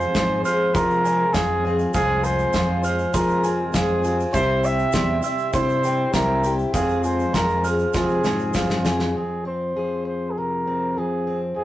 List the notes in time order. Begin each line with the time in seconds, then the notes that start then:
Already playing: F1 F2 C3 F3 G#3 C4 F4 G#4 C5 F5 G#5
0.01 shaker
0.14 G#2 F3 G#3 F4 G#4 C6, kick, snare, shaker
0.44 G#3 C4 F4 G#4 C5 F6, shaker
0.48 F3
0.74 C3 F3 G#3 C4 F4 G#4 A#4 C5 C6, kick, shaker
0.90 shaker
1.04 G#3 C4 F4 C5 G#5, shaker
1.33 F2 F3 G#3 C4 F4 G#4 C5 F5, kick, snare, shaker
1.63 G#3 C4 F4 G#4 C5 G#5
1.68 F3 G#3
1.79 shaker
1.94 F1 C2 F2 C3 F3 G#3 C4 F4 G#4 C5 F5, kick, shaker
2.24 G#3 C5 G#5, shaker
2.39 shaker
2.53 F2 F3 G#3 C4 F4 C5 C6, kick, snare, shaker
2.57 G#4
2.83 G#3 C4 F4 G#4 C5 F6, shaker
2.88 F3
2.99 shaker
3.13 C3 F3 G#3 C4 F4 G#4 A#4 C5 C6, kick, shaker
3.29 shaker
3.44 G#3 C4 F4 A#4 G#5, shaker
3.72 F2 F3 G#3 C4 F4 G#4 C5 F5, kick, snare, shaker
4.02 F3 G#3 C4 F4 G4 G#4 G#5, shaker
4.20 shaker
4.31 C2 C3 G3 C4 E4 G4 C5 E5, kick, shaker
4.63 G3 C4 E4 C5 E5 G5, shaker
4.79 shaker
4.91 E2 G3 C4 E4 G4 C6, kick, snare, shaker
4.95 C5
5.22 G3 C4 E4 G4 C5 E5 E6, shaker
5.27 C4
5.38 shaker
5.53 G2 C3 G3 C4 E4 G4 C5 C6, kick, shaker
5.69 shaker
5.83 G3 C4 G5, shaker
6.13 C2 G3 C4 E4 G4 A#4 C5 E5, kick, snare, shaker
6.43 G3 C4 E4 G4 C5 G5, shaker
6.59 shaker
6.73 F1 F2 C3 F3 G#3 C4 F4 G#4 C5 F5, kick, shaker
6.89 shaker
7.04 G#3 C4 F4 C5 G#5, shaker
7.19 shaker
7.33 F2 F3 G#3 C4 F4 G#4 A#4 C5 C6, kick, snare, shaker
7.49 shaker
7.63 F3 G#3 C4 F4 G#4 C5 F6, shaker
7.79 shaker
7.93 C3 F3 G#3 C4 F4 G#4 C5 C6, kick, snare, shaker
7.97 C4 G#4
8.09 shaker
8.24 G#2 G#3 C4 F4 C5 G#5, snare, shaker
8.39 shaker
8.54 G2 F3 G#3 C4 F4 C5 F5, kick, snare, shaker
8.59 G#4
8.69 snare, shaker
8.84 F2 F3 G#3 C4 F4 G#4 C5 G#5, snare, shaker
8.99 snare
9.14 F2 F3 C4 G#4
9.45 C4 C5
9.76 F3 G#4
10.06 C5
10.30 G#4
10.38 C3 A#4
10.67 C4
10.98 F3 G#4
11.27 C4
11.56 F2 G#4